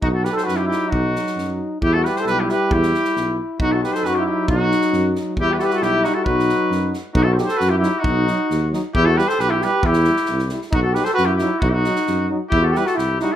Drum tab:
SD |--ooo-o-|--ooo---|--ooo-o-|-oooo---|
BD |o-------|o-------|o-------|o-------|

SD |--ooo---|--ooo-o-|--ooo-o-|-oo-o-o-|
BD |o-------|o-------|o-------|o-------|

SD |--ooo-o-|--o-o-o-|--ooo-o-|-ooooooo|
BD |o-------|o-------|o-------|o-------|

SD |--ooo-o-|--ooo---|--ooo-o-|
BD |o-------|o-------|o-------|